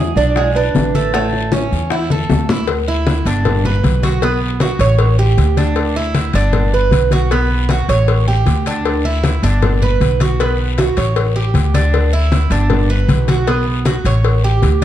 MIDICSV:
0, 0, Header, 1, 5, 480
1, 0, Start_track
1, 0, Key_signature, 2, "major"
1, 0, Tempo, 385356
1, 1417, Time_signature, 4, 2, 24, 8
1, 18491, End_track
2, 0, Start_track
2, 0, Title_t, "Nylon-string guitar"
2, 0, Program_c, 0, 24
2, 0, Note_on_c, 0, 76, 97
2, 201, Note_off_c, 0, 76, 0
2, 206, Note_on_c, 0, 74, 101
2, 658, Note_off_c, 0, 74, 0
2, 686, Note_on_c, 0, 71, 87
2, 1434, Note_off_c, 0, 71, 0
2, 1437, Note_on_c, 0, 73, 87
2, 2820, Note_off_c, 0, 73, 0
2, 18491, End_track
3, 0, Start_track
3, 0, Title_t, "Cuban tres"
3, 0, Program_c, 1, 25
3, 0, Note_on_c, 1, 68, 75
3, 203, Note_off_c, 1, 68, 0
3, 213, Note_on_c, 1, 62, 74
3, 447, Note_off_c, 1, 62, 0
3, 462, Note_on_c, 1, 56, 74
3, 692, Note_off_c, 1, 56, 0
3, 701, Note_on_c, 1, 62, 69
3, 1165, Note_off_c, 1, 62, 0
3, 1184, Note_on_c, 1, 57, 83
3, 1409, Note_off_c, 1, 57, 0
3, 1424, Note_on_c, 1, 57, 84
3, 1887, Note_off_c, 1, 57, 0
3, 1900, Note_on_c, 1, 61, 67
3, 2366, Note_off_c, 1, 61, 0
3, 2386, Note_on_c, 1, 64, 70
3, 2616, Note_off_c, 1, 64, 0
3, 2634, Note_on_c, 1, 69, 73
3, 3093, Note_off_c, 1, 69, 0
3, 3114, Note_on_c, 1, 64, 72
3, 3341, Note_off_c, 1, 64, 0
3, 3588, Note_on_c, 1, 64, 76
3, 4051, Note_off_c, 1, 64, 0
3, 4071, Note_on_c, 1, 62, 75
3, 4532, Note_off_c, 1, 62, 0
3, 4550, Note_on_c, 1, 71, 72
3, 5012, Note_off_c, 1, 71, 0
3, 5024, Note_on_c, 1, 66, 76
3, 5256, Note_off_c, 1, 66, 0
3, 5269, Note_on_c, 1, 59, 85
3, 5731, Note_off_c, 1, 59, 0
3, 5744, Note_on_c, 1, 66, 75
3, 5976, Note_off_c, 1, 66, 0
3, 5987, Note_on_c, 1, 73, 79
3, 6450, Note_off_c, 1, 73, 0
3, 6463, Note_on_c, 1, 67, 76
3, 6928, Note_off_c, 1, 67, 0
3, 6944, Note_on_c, 1, 62, 81
3, 7409, Note_off_c, 1, 62, 0
3, 7427, Note_on_c, 1, 64, 81
3, 7891, Note_off_c, 1, 64, 0
3, 7912, Note_on_c, 1, 62, 84
3, 8374, Note_off_c, 1, 62, 0
3, 8393, Note_on_c, 1, 71, 79
3, 8854, Note_off_c, 1, 71, 0
3, 8875, Note_on_c, 1, 66, 76
3, 9102, Note_off_c, 1, 66, 0
3, 9113, Note_on_c, 1, 59, 86
3, 9574, Note_off_c, 1, 59, 0
3, 9595, Note_on_c, 1, 66, 73
3, 9823, Note_off_c, 1, 66, 0
3, 9834, Note_on_c, 1, 73, 76
3, 10295, Note_off_c, 1, 73, 0
3, 10311, Note_on_c, 1, 67, 78
3, 10773, Note_off_c, 1, 67, 0
3, 10802, Note_on_c, 1, 62, 78
3, 11259, Note_off_c, 1, 62, 0
3, 11273, Note_on_c, 1, 64, 81
3, 11734, Note_off_c, 1, 64, 0
3, 11754, Note_on_c, 1, 62, 81
3, 12215, Note_off_c, 1, 62, 0
3, 12236, Note_on_c, 1, 71, 79
3, 12696, Note_off_c, 1, 71, 0
3, 12718, Note_on_c, 1, 66, 79
3, 12944, Note_off_c, 1, 66, 0
3, 12961, Note_on_c, 1, 59, 82
3, 13418, Note_off_c, 1, 59, 0
3, 13434, Note_on_c, 1, 66, 73
3, 13662, Note_off_c, 1, 66, 0
3, 13671, Note_on_c, 1, 73, 75
3, 14132, Note_off_c, 1, 73, 0
3, 14147, Note_on_c, 1, 67, 72
3, 14611, Note_off_c, 1, 67, 0
3, 14633, Note_on_c, 1, 62, 81
3, 15093, Note_off_c, 1, 62, 0
3, 15111, Note_on_c, 1, 64, 84
3, 15572, Note_off_c, 1, 64, 0
3, 15591, Note_on_c, 1, 62, 81
3, 16052, Note_off_c, 1, 62, 0
3, 16065, Note_on_c, 1, 71, 74
3, 16528, Note_off_c, 1, 71, 0
3, 16550, Note_on_c, 1, 66, 75
3, 16778, Note_off_c, 1, 66, 0
3, 16783, Note_on_c, 1, 59, 85
3, 17246, Note_off_c, 1, 59, 0
3, 17265, Note_on_c, 1, 66, 74
3, 17494, Note_off_c, 1, 66, 0
3, 17515, Note_on_c, 1, 73, 80
3, 17972, Note_off_c, 1, 73, 0
3, 17989, Note_on_c, 1, 67, 75
3, 18448, Note_off_c, 1, 67, 0
3, 18491, End_track
4, 0, Start_track
4, 0, Title_t, "Upright bass"
4, 0, Program_c, 2, 32
4, 0, Note_on_c, 2, 40, 83
4, 133, Note_off_c, 2, 40, 0
4, 194, Note_on_c, 2, 35, 86
4, 876, Note_off_c, 2, 35, 0
4, 932, Note_on_c, 2, 33, 84
4, 2063, Note_off_c, 2, 33, 0
4, 2140, Note_on_c, 2, 40, 85
4, 2811, Note_off_c, 2, 40, 0
4, 2859, Note_on_c, 2, 38, 87
4, 3987, Note_off_c, 2, 38, 0
4, 4052, Note_on_c, 2, 31, 90
4, 4727, Note_off_c, 2, 31, 0
4, 4775, Note_on_c, 2, 35, 89
4, 5905, Note_off_c, 2, 35, 0
4, 5967, Note_on_c, 2, 33, 92
4, 6645, Note_off_c, 2, 33, 0
4, 6694, Note_on_c, 2, 38, 89
4, 7825, Note_off_c, 2, 38, 0
4, 7894, Note_on_c, 2, 31, 91
4, 8569, Note_off_c, 2, 31, 0
4, 8607, Note_on_c, 2, 35, 93
4, 9741, Note_off_c, 2, 35, 0
4, 9823, Note_on_c, 2, 33, 87
4, 10494, Note_off_c, 2, 33, 0
4, 10536, Note_on_c, 2, 38, 86
4, 11666, Note_off_c, 2, 38, 0
4, 11741, Note_on_c, 2, 31, 94
4, 12412, Note_off_c, 2, 31, 0
4, 12461, Note_on_c, 2, 35, 83
4, 13588, Note_off_c, 2, 35, 0
4, 13667, Note_on_c, 2, 33, 88
4, 14335, Note_off_c, 2, 33, 0
4, 14381, Note_on_c, 2, 38, 93
4, 15507, Note_off_c, 2, 38, 0
4, 15571, Note_on_c, 2, 31, 92
4, 16246, Note_off_c, 2, 31, 0
4, 16296, Note_on_c, 2, 35, 90
4, 17423, Note_off_c, 2, 35, 0
4, 17494, Note_on_c, 2, 33, 83
4, 18165, Note_off_c, 2, 33, 0
4, 18218, Note_on_c, 2, 38, 87
4, 18491, Note_off_c, 2, 38, 0
4, 18491, End_track
5, 0, Start_track
5, 0, Title_t, "Drums"
5, 211, Note_on_c, 9, 63, 35
5, 217, Note_on_c, 9, 73, 67
5, 218, Note_on_c, 9, 60, 33
5, 335, Note_off_c, 9, 63, 0
5, 342, Note_off_c, 9, 73, 0
5, 343, Note_off_c, 9, 60, 0
5, 446, Note_on_c, 9, 63, 34
5, 447, Note_on_c, 9, 60, 66
5, 456, Note_on_c, 9, 74, 64
5, 570, Note_off_c, 9, 63, 0
5, 571, Note_off_c, 9, 60, 0
5, 580, Note_off_c, 9, 74, 0
5, 688, Note_on_c, 9, 63, 32
5, 700, Note_on_c, 9, 60, 34
5, 813, Note_off_c, 9, 63, 0
5, 825, Note_off_c, 9, 60, 0
5, 932, Note_on_c, 9, 63, 83
5, 934, Note_on_c, 9, 73, 67
5, 940, Note_on_c, 9, 60, 34
5, 940, Note_on_c, 9, 61, 83
5, 1057, Note_off_c, 9, 63, 0
5, 1058, Note_off_c, 9, 73, 0
5, 1065, Note_off_c, 9, 60, 0
5, 1065, Note_off_c, 9, 61, 0
5, 1177, Note_on_c, 9, 63, 79
5, 1185, Note_on_c, 9, 73, 65
5, 1301, Note_off_c, 9, 63, 0
5, 1310, Note_off_c, 9, 73, 0
5, 1408, Note_on_c, 9, 63, 34
5, 1417, Note_on_c, 9, 60, 66
5, 1438, Note_on_c, 9, 74, 70
5, 1533, Note_off_c, 9, 63, 0
5, 1542, Note_off_c, 9, 60, 0
5, 1562, Note_off_c, 9, 74, 0
5, 1650, Note_on_c, 9, 63, 37
5, 1658, Note_on_c, 9, 60, 33
5, 1775, Note_off_c, 9, 63, 0
5, 1783, Note_off_c, 9, 60, 0
5, 1890, Note_on_c, 9, 63, 87
5, 1897, Note_on_c, 9, 60, 54
5, 1908, Note_on_c, 9, 73, 71
5, 2015, Note_off_c, 9, 63, 0
5, 2022, Note_off_c, 9, 60, 0
5, 2033, Note_off_c, 9, 73, 0
5, 2129, Note_on_c, 9, 63, 34
5, 2134, Note_on_c, 9, 60, 33
5, 2151, Note_on_c, 9, 73, 68
5, 2254, Note_off_c, 9, 63, 0
5, 2258, Note_off_c, 9, 60, 0
5, 2276, Note_off_c, 9, 73, 0
5, 2371, Note_on_c, 9, 60, 67
5, 2383, Note_on_c, 9, 63, 34
5, 2387, Note_on_c, 9, 74, 64
5, 2496, Note_off_c, 9, 60, 0
5, 2507, Note_off_c, 9, 63, 0
5, 2512, Note_off_c, 9, 74, 0
5, 2618, Note_on_c, 9, 63, 91
5, 2624, Note_on_c, 9, 60, 35
5, 2742, Note_off_c, 9, 63, 0
5, 2749, Note_off_c, 9, 60, 0
5, 2859, Note_on_c, 9, 63, 89
5, 2860, Note_on_c, 9, 60, 33
5, 2860, Note_on_c, 9, 61, 85
5, 2870, Note_on_c, 9, 73, 68
5, 2984, Note_off_c, 9, 63, 0
5, 2985, Note_off_c, 9, 60, 0
5, 2985, Note_off_c, 9, 61, 0
5, 2994, Note_off_c, 9, 73, 0
5, 3102, Note_on_c, 9, 64, 107
5, 3123, Note_on_c, 9, 73, 72
5, 3227, Note_off_c, 9, 64, 0
5, 3247, Note_off_c, 9, 73, 0
5, 3332, Note_on_c, 9, 56, 107
5, 3343, Note_on_c, 9, 63, 35
5, 3354, Note_on_c, 9, 74, 73
5, 3457, Note_off_c, 9, 56, 0
5, 3468, Note_off_c, 9, 63, 0
5, 3478, Note_off_c, 9, 74, 0
5, 3587, Note_on_c, 9, 63, 37
5, 3711, Note_off_c, 9, 63, 0
5, 3819, Note_on_c, 9, 63, 98
5, 3822, Note_on_c, 9, 56, 67
5, 3842, Note_on_c, 9, 73, 69
5, 3943, Note_off_c, 9, 63, 0
5, 3947, Note_off_c, 9, 56, 0
5, 3967, Note_off_c, 9, 73, 0
5, 4061, Note_on_c, 9, 63, 37
5, 4065, Note_on_c, 9, 56, 69
5, 4075, Note_on_c, 9, 73, 71
5, 4185, Note_off_c, 9, 63, 0
5, 4190, Note_off_c, 9, 56, 0
5, 4199, Note_off_c, 9, 73, 0
5, 4300, Note_on_c, 9, 56, 100
5, 4306, Note_on_c, 9, 63, 34
5, 4306, Note_on_c, 9, 64, 84
5, 4318, Note_on_c, 9, 74, 68
5, 4425, Note_off_c, 9, 56, 0
5, 4430, Note_off_c, 9, 63, 0
5, 4430, Note_off_c, 9, 64, 0
5, 4443, Note_off_c, 9, 74, 0
5, 4544, Note_on_c, 9, 63, 35
5, 4544, Note_on_c, 9, 64, 76
5, 4668, Note_off_c, 9, 63, 0
5, 4668, Note_off_c, 9, 64, 0
5, 4778, Note_on_c, 9, 63, 85
5, 4786, Note_on_c, 9, 56, 66
5, 4798, Note_on_c, 9, 73, 72
5, 4902, Note_off_c, 9, 63, 0
5, 4910, Note_off_c, 9, 56, 0
5, 4922, Note_off_c, 9, 73, 0
5, 5016, Note_on_c, 9, 63, 84
5, 5026, Note_on_c, 9, 56, 74
5, 5031, Note_on_c, 9, 73, 71
5, 5141, Note_off_c, 9, 63, 0
5, 5150, Note_off_c, 9, 56, 0
5, 5155, Note_off_c, 9, 73, 0
5, 5259, Note_on_c, 9, 56, 106
5, 5261, Note_on_c, 9, 63, 37
5, 5272, Note_on_c, 9, 74, 70
5, 5384, Note_off_c, 9, 56, 0
5, 5386, Note_off_c, 9, 63, 0
5, 5397, Note_off_c, 9, 74, 0
5, 5498, Note_on_c, 9, 63, 37
5, 5623, Note_off_c, 9, 63, 0
5, 5731, Note_on_c, 9, 56, 68
5, 5732, Note_on_c, 9, 63, 99
5, 5750, Note_on_c, 9, 73, 71
5, 5856, Note_off_c, 9, 56, 0
5, 5857, Note_off_c, 9, 63, 0
5, 5874, Note_off_c, 9, 73, 0
5, 5973, Note_on_c, 9, 56, 73
5, 5979, Note_on_c, 9, 73, 72
5, 6098, Note_off_c, 9, 56, 0
5, 6104, Note_off_c, 9, 73, 0
5, 6210, Note_on_c, 9, 56, 109
5, 6224, Note_on_c, 9, 63, 36
5, 6224, Note_on_c, 9, 74, 70
5, 6335, Note_off_c, 9, 56, 0
5, 6348, Note_off_c, 9, 63, 0
5, 6349, Note_off_c, 9, 74, 0
5, 6467, Note_on_c, 9, 63, 33
5, 6591, Note_off_c, 9, 63, 0
5, 6699, Note_on_c, 9, 73, 73
5, 6700, Note_on_c, 9, 63, 87
5, 6702, Note_on_c, 9, 56, 68
5, 6823, Note_off_c, 9, 73, 0
5, 6824, Note_off_c, 9, 63, 0
5, 6827, Note_off_c, 9, 56, 0
5, 6934, Note_on_c, 9, 63, 73
5, 6942, Note_on_c, 9, 56, 72
5, 6946, Note_on_c, 9, 73, 70
5, 7059, Note_off_c, 9, 63, 0
5, 7066, Note_off_c, 9, 56, 0
5, 7071, Note_off_c, 9, 73, 0
5, 7173, Note_on_c, 9, 56, 98
5, 7173, Note_on_c, 9, 63, 32
5, 7186, Note_on_c, 9, 74, 71
5, 7298, Note_off_c, 9, 56, 0
5, 7298, Note_off_c, 9, 63, 0
5, 7311, Note_off_c, 9, 74, 0
5, 7414, Note_on_c, 9, 63, 36
5, 7538, Note_off_c, 9, 63, 0
5, 7654, Note_on_c, 9, 63, 94
5, 7656, Note_on_c, 9, 56, 73
5, 7666, Note_on_c, 9, 73, 72
5, 7778, Note_off_c, 9, 63, 0
5, 7780, Note_off_c, 9, 56, 0
5, 7791, Note_off_c, 9, 73, 0
5, 7890, Note_on_c, 9, 56, 68
5, 7895, Note_on_c, 9, 63, 37
5, 7906, Note_on_c, 9, 73, 75
5, 8015, Note_off_c, 9, 56, 0
5, 8020, Note_off_c, 9, 63, 0
5, 8030, Note_off_c, 9, 73, 0
5, 8131, Note_on_c, 9, 63, 36
5, 8131, Note_on_c, 9, 64, 85
5, 8135, Note_on_c, 9, 56, 104
5, 8143, Note_on_c, 9, 74, 67
5, 8255, Note_off_c, 9, 63, 0
5, 8255, Note_off_c, 9, 64, 0
5, 8260, Note_off_c, 9, 56, 0
5, 8267, Note_off_c, 9, 74, 0
5, 8376, Note_on_c, 9, 63, 37
5, 8500, Note_off_c, 9, 63, 0
5, 8611, Note_on_c, 9, 63, 85
5, 8626, Note_on_c, 9, 56, 73
5, 8630, Note_on_c, 9, 73, 74
5, 8735, Note_off_c, 9, 63, 0
5, 8751, Note_off_c, 9, 56, 0
5, 8755, Note_off_c, 9, 73, 0
5, 8854, Note_on_c, 9, 63, 90
5, 8864, Note_on_c, 9, 56, 73
5, 8871, Note_on_c, 9, 73, 67
5, 8979, Note_off_c, 9, 63, 0
5, 8989, Note_off_c, 9, 56, 0
5, 8996, Note_off_c, 9, 73, 0
5, 9096, Note_on_c, 9, 63, 34
5, 9106, Note_on_c, 9, 56, 106
5, 9111, Note_on_c, 9, 74, 71
5, 9220, Note_off_c, 9, 63, 0
5, 9231, Note_off_c, 9, 56, 0
5, 9236, Note_off_c, 9, 74, 0
5, 9337, Note_on_c, 9, 63, 39
5, 9462, Note_off_c, 9, 63, 0
5, 9576, Note_on_c, 9, 63, 98
5, 9584, Note_on_c, 9, 56, 69
5, 9593, Note_on_c, 9, 73, 69
5, 9700, Note_off_c, 9, 63, 0
5, 9709, Note_off_c, 9, 56, 0
5, 9717, Note_off_c, 9, 73, 0
5, 9829, Note_on_c, 9, 56, 72
5, 9832, Note_on_c, 9, 73, 74
5, 9953, Note_off_c, 9, 56, 0
5, 9956, Note_off_c, 9, 73, 0
5, 10057, Note_on_c, 9, 63, 38
5, 10066, Note_on_c, 9, 56, 102
5, 10067, Note_on_c, 9, 74, 70
5, 10182, Note_off_c, 9, 63, 0
5, 10190, Note_off_c, 9, 56, 0
5, 10191, Note_off_c, 9, 74, 0
5, 10299, Note_on_c, 9, 63, 34
5, 10424, Note_off_c, 9, 63, 0
5, 10540, Note_on_c, 9, 63, 82
5, 10545, Note_on_c, 9, 56, 68
5, 10552, Note_on_c, 9, 73, 70
5, 10664, Note_off_c, 9, 63, 0
5, 10669, Note_off_c, 9, 56, 0
5, 10677, Note_off_c, 9, 73, 0
5, 10789, Note_on_c, 9, 56, 72
5, 10795, Note_on_c, 9, 73, 70
5, 10913, Note_off_c, 9, 56, 0
5, 10920, Note_off_c, 9, 73, 0
5, 11027, Note_on_c, 9, 63, 32
5, 11030, Note_on_c, 9, 56, 104
5, 11035, Note_on_c, 9, 74, 68
5, 11151, Note_off_c, 9, 63, 0
5, 11154, Note_off_c, 9, 56, 0
5, 11160, Note_off_c, 9, 74, 0
5, 11262, Note_on_c, 9, 63, 37
5, 11386, Note_off_c, 9, 63, 0
5, 11504, Note_on_c, 9, 63, 98
5, 11512, Note_on_c, 9, 73, 72
5, 11517, Note_on_c, 9, 56, 70
5, 11628, Note_off_c, 9, 63, 0
5, 11637, Note_off_c, 9, 73, 0
5, 11642, Note_off_c, 9, 56, 0
5, 11746, Note_on_c, 9, 63, 35
5, 11751, Note_on_c, 9, 56, 68
5, 11763, Note_on_c, 9, 73, 73
5, 11870, Note_off_c, 9, 63, 0
5, 11875, Note_off_c, 9, 56, 0
5, 11887, Note_off_c, 9, 73, 0
5, 11988, Note_on_c, 9, 63, 35
5, 11988, Note_on_c, 9, 64, 83
5, 11989, Note_on_c, 9, 56, 108
5, 12000, Note_on_c, 9, 74, 69
5, 12112, Note_off_c, 9, 63, 0
5, 12112, Note_off_c, 9, 64, 0
5, 12113, Note_off_c, 9, 56, 0
5, 12124, Note_off_c, 9, 74, 0
5, 12229, Note_on_c, 9, 63, 36
5, 12229, Note_on_c, 9, 64, 72
5, 12354, Note_off_c, 9, 63, 0
5, 12354, Note_off_c, 9, 64, 0
5, 12469, Note_on_c, 9, 63, 87
5, 12472, Note_on_c, 9, 56, 68
5, 12478, Note_on_c, 9, 73, 75
5, 12594, Note_off_c, 9, 63, 0
5, 12596, Note_off_c, 9, 56, 0
5, 12602, Note_off_c, 9, 73, 0
5, 12708, Note_on_c, 9, 56, 71
5, 12714, Note_on_c, 9, 63, 84
5, 12725, Note_on_c, 9, 73, 69
5, 12832, Note_off_c, 9, 56, 0
5, 12839, Note_off_c, 9, 63, 0
5, 12849, Note_off_c, 9, 73, 0
5, 12951, Note_on_c, 9, 63, 35
5, 12955, Note_on_c, 9, 56, 103
5, 12967, Note_on_c, 9, 74, 71
5, 13076, Note_off_c, 9, 63, 0
5, 13079, Note_off_c, 9, 56, 0
5, 13091, Note_off_c, 9, 74, 0
5, 13196, Note_on_c, 9, 63, 37
5, 13320, Note_off_c, 9, 63, 0
5, 13425, Note_on_c, 9, 56, 65
5, 13433, Note_on_c, 9, 63, 95
5, 13441, Note_on_c, 9, 73, 69
5, 13550, Note_off_c, 9, 56, 0
5, 13557, Note_off_c, 9, 63, 0
5, 13565, Note_off_c, 9, 73, 0
5, 13662, Note_on_c, 9, 56, 68
5, 13686, Note_on_c, 9, 73, 73
5, 13787, Note_off_c, 9, 56, 0
5, 13811, Note_off_c, 9, 73, 0
5, 13905, Note_on_c, 9, 56, 109
5, 13909, Note_on_c, 9, 63, 37
5, 13918, Note_on_c, 9, 74, 71
5, 14029, Note_off_c, 9, 56, 0
5, 14034, Note_off_c, 9, 63, 0
5, 14043, Note_off_c, 9, 74, 0
5, 14139, Note_on_c, 9, 63, 34
5, 14264, Note_off_c, 9, 63, 0
5, 14374, Note_on_c, 9, 63, 86
5, 14385, Note_on_c, 9, 56, 72
5, 14399, Note_on_c, 9, 73, 71
5, 14498, Note_off_c, 9, 63, 0
5, 14510, Note_off_c, 9, 56, 0
5, 14524, Note_off_c, 9, 73, 0
5, 14623, Note_on_c, 9, 63, 75
5, 14630, Note_on_c, 9, 56, 77
5, 14643, Note_on_c, 9, 73, 76
5, 14748, Note_off_c, 9, 63, 0
5, 14754, Note_off_c, 9, 56, 0
5, 14768, Note_off_c, 9, 73, 0
5, 14867, Note_on_c, 9, 63, 34
5, 14871, Note_on_c, 9, 56, 108
5, 14880, Note_on_c, 9, 74, 72
5, 14991, Note_off_c, 9, 63, 0
5, 14996, Note_off_c, 9, 56, 0
5, 15005, Note_off_c, 9, 74, 0
5, 15103, Note_on_c, 9, 63, 38
5, 15227, Note_off_c, 9, 63, 0
5, 15343, Note_on_c, 9, 63, 94
5, 15350, Note_on_c, 9, 56, 69
5, 15355, Note_on_c, 9, 73, 71
5, 15468, Note_off_c, 9, 63, 0
5, 15475, Note_off_c, 9, 56, 0
5, 15479, Note_off_c, 9, 73, 0
5, 15579, Note_on_c, 9, 56, 69
5, 15583, Note_on_c, 9, 63, 34
5, 15590, Note_on_c, 9, 73, 69
5, 15704, Note_off_c, 9, 56, 0
5, 15707, Note_off_c, 9, 63, 0
5, 15715, Note_off_c, 9, 73, 0
5, 15816, Note_on_c, 9, 56, 98
5, 15824, Note_on_c, 9, 63, 34
5, 15824, Note_on_c, 9, 64, 88
5, 15828, Note_on_c, 9, 74, 68
5, 15941, Note_off_c, 9, 56, 0
5, 15948, Note_off_c, 9, 63, 0
5, 15948, Note_off_c, 9, 64, 0
5, 15953, Note_off_c, 9, 74, 0
5, 16064, Note_on_c, 9, 63, 34
5, 16188, Note_off_c, 9, 63, 0
5, 16298, Note_on_c, 9, 63, 88
5, 16303, Note_on_c, 9, 73, 74
5, 16307, Note_on_c, 9, 56, 70
5, 16423, Note_off_c, 9, 63, 0
5, 16427, Note_off_c, 9, 73, 0
5, 16432, Note_off_c, 9, 56, 0
5, 16541, Note_on_c, 9, 63, 85
5, 16542, Note_on_c, 9, 56, 72
5, 16545, Note_on_c, 9, 73, 68
5, 16666, Note_off_c, 9, 63, 0
5, 16667, Note_off_c, 9, 56, 0
5, 16670, Note_off_c, 9, 73, 0
5, 16778, Note_on_c, 9, 74, 68
5, 16785, Note_on_c, 9, 56, 102
5, 16785, Note_on_c, 9, 63, 35
5, 16902, Note_off_c, 9, 74, 0
5, 16909, Note_off_c, 9, 56, 0
5, 16909, Note_off_c, 9, 63, 0
5, 17019, Note_on_c, 9, 63, 39
5, 17143, Note_off_c, 9, 63, 0
5, 17254, Note_on_c, 9, 73, 74
5, 17257, Note_on_c, 9, 63, 93
5, 17260, Note_on_c, 9, 56, 71
5, 17379, Note_off_c, 9, 73, 0
5, 17382, Note_off_c, 9, 63, 0
5, 17385, Note_off_c, 9, 56, 0
5, 17500, Note_on_c, 9, 73, 70
5, 17506, Note_on_c, 9, 56, 73
5, 17625, Note_off_c, 9, 73, 0
5, 17631, Note_off_c, 9, 56, 0
5, 17736, Note_on_c, 9, 63, 35
5, 17737, Note_on_c, 9, 74, 67
5, 17744, Note_on_c, 9, 56, 103
5, 17861, Note_off_c, 9, 63, 0
5, 17862, Note_off_c, 9, 74, 0
5, 17869, Note_off_c, 9, 56, 0
5, 17979, Note_on_c, 9, 63, 34
5, 18104, Note_off_c, 9, 63, 0
5, 18212, Note_on_c, 9, 63, 88
5, 18217, Note_on_c, 9, 73, 70
5, 18223, Note_on_c, 9, 56, 71
5, 18337, Note_off_c, 9, 63, 0
5, 18342, Note_off_c, 9, 73, 0
5, 18347, Note_off_c, 9, 56, 0
5, 18454, Note_on_c, 9, 63, 72
5, 18491, Note_off_c, 9, 63, 0
5, 18491, End_track
0, 0, End_of_file